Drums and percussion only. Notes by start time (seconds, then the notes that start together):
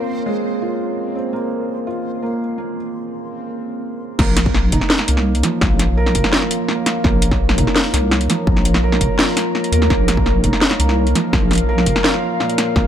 4.19 kick, snare, crash
4.37 snare, closed hi-hat
4.46 kick
4.54 snare
4.72 kick, closed hi-hat
4.81 snare
4.90 snare
4.99 snare
5.08 closed hi-hat
5.17 snare
5.35 closed hi-hat
5.43 snare, closed hi-hat
5.61 kick, snare
5.79 snare, closed hi-hat
6.06 snare
6.15 kick, closed hi-hat
6.24 snare
6.33 snare
6.42 snare
6.51 closed hi-hat
6.68 snare
6.86 snare, closed hi-hat
7.04 kick, snare
7.22 closed hi-hat
7.32 kick, snare
7.49 snare
7.58 kick, closed hi-hat
7.67 snare
7.76 snare
7.94 snare, closed hi-hat
8.11 snare
8.21 closed hi-hat
8.30 snare, closed hi-hat
8.47 kick
8.57 snare
8.65 closed hi-hat
8.74 snare
8.92 snare
9.01 kick, closed hi-hat
9.19 snare
9.37 snare, closed hi-hat
9.55 snare
9.64 closed hi-hat
9.73 closed hi-hat
9.82 snare
9.90 kick, snare
10.08 snare, closed hi-hat
10.17 kick
10.26 snare
10.44 kick, closed hi-hat
10.53 snare
10.62 snare
10.71 snare
10.80 closed hi-hat
10.89 snare
11.07 closed hi-hat
11.15 snare, closed hi-hat
11.33 kick, snare
11.51 snare, closed hi-hat
11.53 closed hi-hat
11.55 closed hi-hat
11.58 closed hi-hat
11.78 snare
11.86 kick, closed hi-hat
11.96 snare
12.04 snare
12.14 snare
12.40 snare
12.50 closed hi-hat
12.58 snare, closed hi-hat
12.76 kick, snare